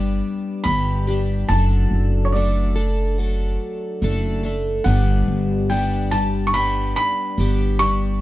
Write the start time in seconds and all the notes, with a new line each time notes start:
Already playing: G1 G3 B3 D4 G4 D6
0.64 G1 G3 B3 D4 G4 B5
1.07 G3 B3 D4 G4
1.49 F#1 F#3 A3 D4 A4 A5
1.91 F#1
2.25 C#5
2.32 F#3 A3 D4 A4 D5
2.76 A3 D4 A4
3.18 F#3 A3 D4 A4
4.02 F#1 F#3 A3 D4 A4
4.43 A3 D4 A4
4.84 G1 G2 D3 G3 B3 D4 G4 F#5
5.28 G1
5.70 G3 B3 D4 G4 G5
6.11 G3 B3 D4 G4 A5
6.47 C#6
6.53 G3 B3 D4 G4 B5
6.96 B5
7.38 G1 G3 B3 D4 G4
7.79 G3 B3 D4 G4 C#6